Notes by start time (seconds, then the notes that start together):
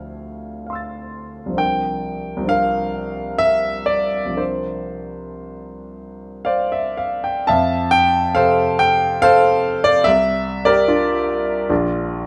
Already playing: D2 F3 C4 E4 A4 F5
0.67 F5 C6
0.73 E6 A6
1.46 C2 F3
1.52 C4 D4
1.57 A#4 G5
2.37 C2 F3
2.43 C4 D4
2.48 A#4 F5
3.38 E5
3.86 D5
4.26 C2 F3
4.31 C4 D4
4.37 A#4 C5
6.45 C5 D5 F5
6.72 E5
6.97 F5
7.24 G5
7.47 F2 E5 F5 A5
7.91 G5
8.35 C3 A4 C5 F5
8.79 G5
9.22 A4 C5 F5
9.84 D5
10.04 C2 E5
10.65 G4 A#4 D5
10.88 D4 F4
11.69 A#1 D4 F4